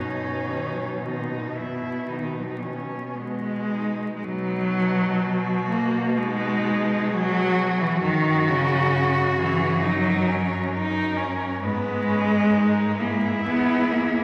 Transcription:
Already playing: F#2 B2 C#4 D#4
0.18 B2
0.46 D#3
0.73 F#3
1.01 D#3 B3 D#4
1.30 B2
1.57 F#2 E4
1.84 B2
2.09 D#3 D#4
2.36 F#3
2.60 D#3 C#4
2.74 C#4
2.83 B3
2.90 B2
2.94 A#3
3.05 B3
3.15 G#3 B3
3.70 D#4
4.16 G#3
4.24 B2 F#3 D#4
5.21 F#4
5.69 A#3
6.14 G#3 D#4 F#4
6.64 G#4
7.09 F#3 F#4
7.81 E3
7.99 D#3 F#4
8.03 F#2 A#4
8.49 C#3
8.94 F#4
9.39 E3 G#4
9.82 F#3 D#4 A#4
10.28 C#4
10.72 D#4 A#4
11.17 C#4
11.61 G#2 G#3 B3 B4
12.08 C#4
12.53 D#4 A#4
12.98 A#3 E4 G#4
13.45 E2 B3 G#4
13.91 A#3

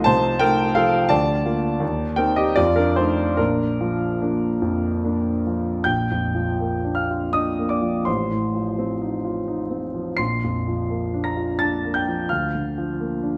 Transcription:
Already playing: C2 F3 A3 D#4 D#5 C6
0.04 C3 C5 A5
0.39 A3 D#4 A#4 G5
0.75 F3 A4 F5
1.09 D2 D5 A5
1.45 A#3 F4
1.80 D#2
2.16 C4 D#4 A#4 G5
2.36 G4 D#5
2.56 F2 F4 D5
2.76 D4 A#4
2.96 A3 C4 D#4 C5
3.37 A#1 D4 A#4
3.81 F3
4.21 A#3 D4
4.62 F2
5.04 A#3 D4
5.47 F3
5.84 A#1 G5 G6
6.11 F2
6.35 F3
6.61 A#3
6.84 D4
6.95 F5 F6
7.10 F4
7.33 D4 D#5 D#6
7.59 A#3
7.69 D5 D6
7.82 F3
8.05 A1 C5 C6
8.31 A2
8.55 F3
8.79 C4
9.02 D#4
9.24 F4
9.48 D#4
9.71 C4
9.94 F3
10.17 A#1 C6 C7
10.44 F2
10.68 F3
10.90 A#3
11.14 D4
11.24 A#5 A#6
11.37 F4
11.59 D4 A5 A6
11.85 A#3
11.94 G5 G6
12.08 F3
12.29 D2 F5 F6
12.55 D3
12.78 F3
13.01 A#3
13.23 D4

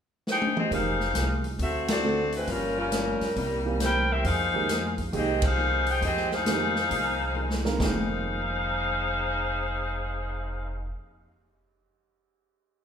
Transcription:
0.27 D#4 G#4 C5 G5, snare
0.42 high tom
0.57 C4 G4 G#4 D#5, mid tom
0.70 F1 D#3 F3 G#3 A#3 D#4 G4 G#4 C5 F5, kick, open hi-hat
1.00 snare
1.14 C2 F3 A#3 D#4 G#4, snare, closed hi-hat
1.44 open hi-hat
1.59 D2 D3 A3 C4 F#4 A4 E5, kick, open hi-hat
1.88 C4 F#4 A4 D5, snare, ride
2.04 D3 A3 C4 F#4 A4
2.32 G#3 C4 E4 B4, open hi-hat
2.47 G1 G2 F3 G3 A#3 C#4 F4 A#4, kick, open hi-hat
2.78 G3 C#4 F4 A#4
2.92 G2 F3 A#3 C#4, snare, closed hi-hat
3.20 muted upright bass stroke, snare, open hi-hat
3.36 C2 C3 G3 A#3 E4, kick, open hi-hat
3.65 E3 A#3 C4 G4
3.80 C3 G3 A#3 E4 A#4 C5 G5, snare, closed hi-hat
4.11 C4 G4 A#4 E5
4.24 F2 F3 A#3 D#4 G#4 C5 F5, kick, open hi-hat
4.53 D#3 G#3 A#3 G4
4.69 F3 A#3 D#4 G#4, snare, closed hi-hat
4.98 kick, open hi-hat
5.13 C2 D#3 F3 G#3 A#3 C4 D#4 G4 G#4 D#5, kick, open hi-hat
5.42 D#4 G#4 C5 F5, kick, ride
5.58 F3 A#3 D#4 G#4
5.86 D#4 G#4 C5 G5, open hi-hat
6.01 F2 F3 A#3 D#4 G#4 D#5, kick, open hi-hat
6.05 C4 G4 G#4
6.17 snare
6.31 D#4 G#4 C5 F5, snare
6.45 D#3 F3 G#3 A#3 D#4 G4 G#4, snare, closed hi-hat
6.76 snare
6.89 C2 F3 A#3 D#4 G#4, kick, open hi-hat
7.34 F3 A#3 D#4 G#4
7.50 snare
7.64 F2 D#3 G#3 A#3 A#4, snare
7.78 F1 F2 D#3 F3 G#3 A#3 D#4 G#4 C5 F5 G5, kick, snare
7.83 D#4

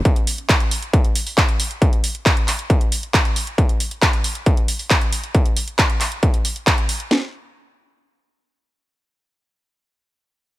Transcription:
0.05 kick, closed hi-hat
0.16 closed hi-hat
0.27 open hi-hat
0.38 closed hi-hat
0.49 kick, clap, closed hi-hat
0.60 closed hi-hat
0.71 open hi-hat
0.82 closed hi-hat
0.93 kick, closed hi-hat
1.05 closed hi-hat
1.15 open hi-hat
1.27 open hi-hat
1.38 kick, clap, closed hi-hat
1.49 closed hi-hat
1.60 open hi-hat
1.71 closed hi-hat
1.82 kick, closed hi-hat
1.93 closed hi-hat
2.04 open hi-hat
2.15 closed hi-hat
2.26 kick, clap, closed hi-hat
2.37 closed hi-hat
2.48 clap, open hi-hat
2.59 closed hi-hat
2.70 kick, closed hi-hat
2.81 closed hi-hat
2.92 open hi-hat
3.03 closed hi-hat
3.14 kick, clap, closed hi-hat
3.25 closed hi-hat
3.36 open hi-hat
3.47 closed hi-hat
3.58 kick, closed hi-hat
3.69 closed hi-hat
3.80 open hi-hat
3.91 closed hi-hat
4.02 kick, clap, closed hi-hat
4.13 closed hi-hat
4.24 open hi-hat
4.35 closed hi-hat
4.46 kick, closed hi-hat
4.57 closed hi-hat
4.68 open hi-hat
4.79 open hi-hat
4.90 kick, clap, closed hi-hat
5.01 closed hi-hat
5.13 open hi-hat
5.24 closed hi-hat
5.35 kick, closed hi-hat
5.46 closed hi-hat
5.57 open hi-hat
5.68 closed hi-hat
5.79 kick, clap, closed hi-hat
5.90 closed hi-hat
6.01 clap, open hi-hat
6.12 closed hi-hat
6.23 kick, closed hi-hat
6.34 closed hi-hat
6.45 open hi-hat
6.56 closed hi-hat
6.67 kick, clap, closed hi-hat
6.78 closed hi-hat
6.89 open hi-hat
7.00 closed hi-hat
7.11 snare

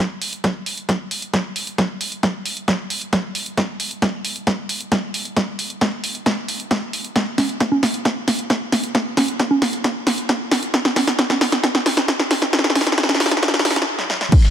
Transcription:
0.22 open hi-hat
0.33 closed hi-hat
0.44 kick, snare, closed hi-hat
0.66 open hi-hat
0.78 closed hi-hat
0.89 kick, snare, closed hi-hat
1.11 open hi-hat
1.22 closed hi-hat
1.34 kick, snare, closed hi-hat
1.56 open hi-hat
1.67 closed hi-hat
1.78 kick, snare, closed hi-hat
2.01 open hi-hat
2.12 closed hi-hat
2.23 kick, snare, closed hi-hat
2.46 open hi-hat
2.57 closed hi-hat
2.68 kick, snare, closed hi-hat
2.90 open hi-hat
3.01 closed hi-hat
3.13 kick, snare, closed hi-hat
3.35 open hi-hat
3.46 closed hi-hat
3.57 kick, snare, closed hi-hat
3.80 open hi-hat
3.91 closed hi-hat
4.02 kick, snare, closed hi-hat
4.25 open hi-hat
4.36 closed hi-hat
4.47 kick, snare, closed hi-hat
4.69 open hi-hat
4.80 closed hi-hat
4.92 kick, snare, closed hi-hat
5.14 open hi-hat
5.25 closed hi-hat
5.37 kick, snare, closed hi-hat
5.59 open hi-hat
5.70 closed hi-hat
5.81 kick, snare, closed hi-hat
6.04 open hi-hat
6.15 closed hi-hat
6.26 kick, snare, closed hi-hat
6.48 open hi-hat
6.60 closed hi-hat
6.71 kick, snare, closed hi-hat
6.93 open hi-hat
7.04 closed hi-hat
7.16 kick, snare, closed hi-hat
7.38 snare, open hi-hat, high conga
7.49 closed hi-hat
7.60 kick, snare, closed hi-hat
7.72 high conga
7.83 snare, open hi-hat
7.94 closed hi-hat
8.05 kick, snare, closed hi-hat
8.28 snare, open hi-hat
8.39 closed hi-hat
8.50 kick, snare, closed hi-hat
8.72 snare, open hi-hat
8.84 closed hi-hat
8.95 kick, snare, closed hi-hat
9.17 snare, open hi-hat, high conga
9.28 closed hi-hat
9.39 kick, snare, closed hi-hat
9.51 high conga
9.62 snare, open hi-hat
9.73 closed hi-hat
9.84 kick, snare, closed hi-hat
10.07 snare, open hi-hat
10.18 closed hi-hat
10.29 kick, snare, closed hi-hat
10.51 snare, open hi-hat
10.63 closed hi-hat
10.74 kick, snare, closed hi-hat
10.85 snare
10.96 snare, open hi-hat, high conga
11.07 snare, closed hi-hat
11.19 kick, snare, closed hi-hat
11.30 snare, high conga
11.41 snare, open hi-hat
11.52 snare, closed hi-hat
11.63 kick, snare, closed hi-hat
11.75 snare
11.86 snare, open hi-hat
11.97 snare, closed hi-hat
12.08 kick, snare, closed hi-hat
12.19 snare
12.31 snare, open hi-hat
12.42 snare, closed hi-hat
12.53 kick, snare, closed hi-hat
12.59 snare
12.64 snare
12.70 snare
12.75 snare, open hi-hat, high conga
12.81 snare
12.87 snare, closed hi-hat
12.92 snare
12.98 kick, snare, closed hi-hat
13.03 snare
13.09 snare, high conga
13.15 snare
13.20 snare, open hi-hat
13.26 snare
13.31 snare, closed hi-hat
13.37 snare
13.43 kick, snare, closed hi-hat
13.48 snare
13.54 snare
13.59 snare
13.65 snare, open hi-hat
13.71 snare
13.76 snare, closed hi-hat, high conga
13.82 snare
13.99 snare
14.10 snare
14.21 snare
14.32 kick, closed hi-hat, crash
14.43 clap

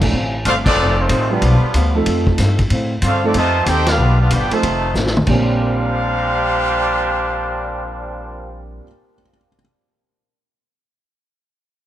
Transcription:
Already playing: A#1
0.01 F3 A3 C4 D4 A4, kick, crash
0.13 A1 D3 A3 C4 F4, kick
0.45 G1 D3 A3 C4 D4 F4 A4 C5 F5, kick, hi-hat pedal, ride
0.65 D#3 A3 C4 D4 F4 A4 D5, kick, crash
0.77 F1 F2 D#3 A3 C4
0.97 D#3 A3 C4 D#4 F4 C5
1.09 A1 F2 D#3 A3 C4, kick, hi-hat pedal, ride
1.30 D3 F3 G3 B3 D4 F4 G4 B4
1.42 B1 G2 F3 B3 D4, kick, ride
1.62 muted upright bass stroke
1.74 D2 G2 F3 B3 D4, kick, hi-hat pedal, ride
1.95 F3 A3 C4 D#4 A4
2.06 F2 F3 C4 D#4 A4, kick, ride
2.27 kick
2.38 G2 F3 C4 D#4 A4, kick, snare, hi-hat pedal, ride
2.59 kick, ride
2.70 A2 D3 C4 F4 A4, kick, ride
3.02 G2 D3 A3 C4 D4 F4 A4 C5 F5, kick, hi-hat pedal, ride
3.06 A4
3.23 F3 A3 C4 D4 D#4 F4 A4 D5
3.34 F2 C3 D#3 F3 A3 C4 D#4 F4 A4 C5 D#5 A5, kick, ride
3.66 D#2 F3 C4 D#4 G4 A4 C5 G5, kick, hi-hat pedal, ride
3.86 B3 D4 F4 G4 B4 F5, snare, ride
3.98 B1 G2 F3 B3
4.02 D4
4.20 B3 D4 F4 G4 B4 F5
4.30 G1 G2 F3 B3 D4 F4 G4 B4 D5 G5, kick, hi-hat pedal, ride
4.50 C3 D#3 F3 A3 C4 D#4 F4 A4 C5 D#5 A5, muted upright bass stroke, ride
4.63 F1 F2 D#3 A3 C4, kick, ride
4.94 A1 F2 D#3 A3 C4, snare, hi-hat pedal
5.07 snare
5.17 mid tom
5.26 A#1 A#2 F3 G3 A#3 C4 D4 G4 C5 F5, kick, crash
5.30 C4 G4
5.35 D4
5.61 A#4
5.68 D5
5.76 G5
5.86 A#5
5.95 D6
6.18 A#6

